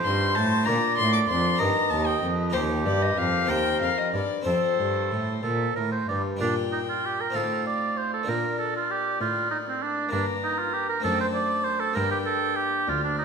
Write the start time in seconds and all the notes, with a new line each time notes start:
Already playing: D#4 F4 A4 C5
0.04 G2 C6
0.35 A2 A5
0.63 D4 F4 A#4 D5 A#5
0.68 A#2
0.97 A2 C6
1.13 D6
1.28 F2 C6
1.56 D#4 G4 A#4 A#5
1.60 G2 D#5
1.90 D#2 A5
2.06 G5
2.22 F2
2.50 D#2 D#4 G4 A#4 C5
2.54 D#2 G4
2.85 G2 D5
3.02 D#5
3.17 F2 F5
3.45 D#2 C4 G4 A#4 C5
3.49 D#2 G5
3.81 F2 F5
3.98 D#5
4.14 G2 D5
4.41 C4 A4 C5
4.46 F2 A4 C5
4.79 G2
5.12 A2
5.43 A#2 A4
5.76 A2 A#4
5.92 C5
6.08 G2 D5
6.37 D4 F4 A#4
6.41 A#2 D4 G5
6.72 D#4
6.89 F4
7.06 G4
7.21 A#4
7.30 A2 C4 D#4 F4 F5
7.35 A2 A4
7.67 D5
7.97 C5
8.14 A4
8.23 A#3 D4
8.27 A#2 A#4 D5
8.59 A4
8.76 F4
8.91 G4
9.21 A2 F4
9.51 D#4
9.69 C4
9.83 D4
10.09 A#3 D4 A#5
10.13 G2
10.44 D#4
10.59 F4
10.73 G4
10.89 A#4
11.00 A3 C4 D4 A4
11.04 F#2 A5
11.20 C5
11.34 D5
11.64 C5
11.80 A4
11.93 G2 A#3 D4 A#4 G5
12.11 G4
12.26 A4
12.56 G4
12.88 D2 F4 D5
13.04 D4
13.18 D#4